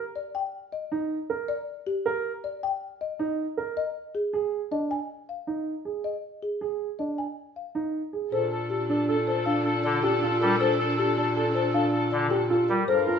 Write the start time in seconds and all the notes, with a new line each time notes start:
0.16 D5
0.35 G5
0.72 D#5
0.92 D#4
1.30 A#4
1.48 D5
1.87 G4
2.06 A#4
2.44 D5
2.63 G5
3.01 D#5
3.19 D#4
3.57 A#4
3.77 D#5
4.15 G#4
4.33 G#4
4.71 D4 D#5
4.91 G#5
5.29 F5
5.47 D#4
5.85 G#4
6.04 D#5
6.43 G#4
6.61 G#4
6.99 D4 D#5
7.18 G#5
7.56 F5
7.75 D#4
8.13 G#4
8.32 A#2 D4 A4 C5
8.51 A4
8.70 G4 A4
8.89 D4 A4
9.08 A4
9.27 A4 C5
9.46 D4 A4 F5
9.65 A4
9.84 D3 A4 D5
10.03 G4 A4
10.22 F4 A4
10.41 G3 A4 A#4
10.60 A4 C5
10.79 A4
10.98 G4 A4
11.17 D4 A4
11.36 A4
11.55 A4 C5
11.74 D4 A4 F5
11.93 A4
12.12 D3 A4 D5
12.31 G4 A4
12.50 F4 A4
12.69 G3 A#4
12.88 G2 F4 A4 A#4 C5
13.07 F4 A#4